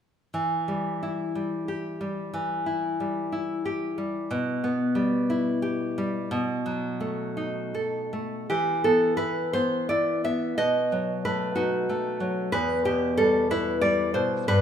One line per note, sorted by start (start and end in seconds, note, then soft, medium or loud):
0.34 2.30 E3 soft
0.68 1.34 G3 soft
1.03 2.02 E4 soft
1.35 1.99 G3 soft
1.68 2.66 G4 soft
2.01 2.99 G3 soft
2.34 4.27 E3 soft
2.66 3.31 E4 soft
3.00 3.97 G3 soft
3.32 4.31 E4 soft
3.65 4.32 G4 soft
3.98 4.31 G3 soft
4.31 6.27 B2 medium
4.64 5.62 B3 soft
4.95 5.96 G3 soft
5.30 6.31 E4 soft
5.62 6.31 G4 soft
5.98 6.32 G3 soft
6.31 8.46 B2 medium
6.66 7.73 F#3 soft
7.00 8.12 A3 soft
7.37 8.50 D#4 soft
7.74 8.49 A4 soft
8.13 8.50 A3 soft
8.50 10.53 E3 soft
8.50 8.82 G4 medium
8.84 9.53 B3 soft
8.84 9.16 A4 medium
9.17 9.89 E4 soft
9.17 9.51 B4 medium
9.53 10.23 B3 soft
9.53 9.87 C5 medium
9.89 10.58 E4 soft
9.89 10.22 D5 medium
10.24 10.58 B3 soft
10.24 10.56 E5 medium
10.58 12.48 B2 soft
10.58 11.21 D#5 medium
10.92 11.89 F#3 soft
11.25 11.88 A3 soft
11.25 11.55 B4 medium
11.55 12.52 D#4 soft
11.55 12.48 F#4 medium
11.89 12.53 A3 soft
12.20 12.52 F#3 soft
12.52 14.14 E2 soft
12.52 12.83 B4 medium
12.85 13.83 B2 soft
12.85 13.17 G4 medium
13.17 13.81 G3 soft
13.17 13.49 A4 medium
13.51 14.48 E4 soft
13.51 13.81 B4 medium
13.81 14.47 G3 soft
13.81 14.13 D5 medium
14.14 14.48 B2 soft
14.14 14.46 C5 medium
14.48 14.62 G2 medium
14.48 14.62 B4 medium